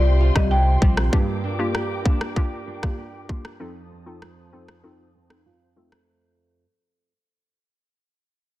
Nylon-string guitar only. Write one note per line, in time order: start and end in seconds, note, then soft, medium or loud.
0.00 1.13 C3 medium
0.00 0.20 F4 medium
0.00 0.51 G4 medium
0.20 1.43 F4 medium
0.51 1.74 G4 medium
0.82 1.19 C4 medium
1.13 3.60 G2 medium
1.44 2.04 D4 medium
1.75 2.35 G4 medium
2.06 2.66 D4 medium
2.37 2.97 G4 medium
2.67 3.66 D4 medium
2.98 3.66 G4 medium
3.29 3.66 A#3 medium
3.60 6.64 F2 medium
3.91 4.53 C4 medium
4.22 4.84 F4 medium
4.53 5.14 C4 medium
4.84 5.45 F4 medium
5.15 6.64 C4 medium
5.46 6.64 F4 medium
5.77 6.64 A3 medium